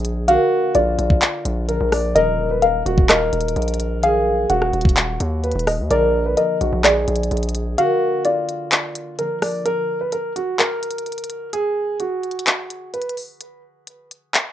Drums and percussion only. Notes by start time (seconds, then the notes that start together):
0.05 closed hi-hat
0.28 closed hi-hat
0.75 closed hi-hat
0.99 closed hi-hat
1.10 kick
1.22 clap, closed hi-hat
1.45 closed hi-hat
1.69 closed hi-hat
1.92 cross-stick, open hi-hat
2.16 closed hi-hat
2.62 closed hi-hat
2.86 closed hi-hat
2.98 kick
3.09 cross-stick, clap, closed hi-hat
3.33 closed hi-hat
3.41 closed hi-hat
3.48 closed hi-hat
3.56 closed hi-hat
3.62 closed hi-hat
3.68 closed hi-hat
3.74 closed hi-hat
3.80 closed hi-hat
4.03 closed hi-hat
4.50 closed hi-hat
4.62 cross-stick
4.73 closed hi-hat
4.81 kick, closed hi-hat
4.89 closed hi-hat
4.97 clap, closed hi-hat
5.20 closed hi-hat
5.44 closed hi-hat
5.52 closed hi-hat
5.59 closed hi-hat
5.67 cross-stick, open hi-hat
5.91 closed hi-hat
6.37 closed hi-hat
6.61 closed hi-hat
6.84 cross-stick, clap, closed hi-hat
7.08 closed hi-hat
7.16 closed hi-hat
7.23 closed hi-hat
7.31 closed hi-hat
7.37 closed hi-hat
7.43 closed hi-hat
7.49 closed hi-hat
7.55 closed hi-hat
7.78 closed hi-hat
8.25 closed hi-hat
8.49 closed hi-hat
8.72 clap, closed hi-hat
8.95 closed hi-hat
9.19 closed hi-hat
9.42 cross-stick, open hi-hat
9.66 closed hi-hat
10.12 closed hi-hat
10.36 closed hi-hat
10.59 clap, closed hi-hat
10.83 closed hi-hat
10.91 closed hi-hat
10.98 closed hi-hat
11.06 closed hi-hat
11.12 closed hi-hat
11.18 closed hi-hat
11.24 closed hi-hat
11.30 closed hi-hat
11.53 closed hi-hat
12.00 closed hi-hat
12.23 closed hi-hat
12.31 closed hi-hat
12.39 closed hi-hat
12.47 clap, closed hi-hat
12.70 closed hi-hat
12.94 closed hi-hat
13.02 closed hi-hat
13.09 closed hi-hat
13.17 open hi-hat
13.41 closed hi-hat
13.87 closed hi-hat
14.11 closed hi-hat
14.34 clap, closed hi-hat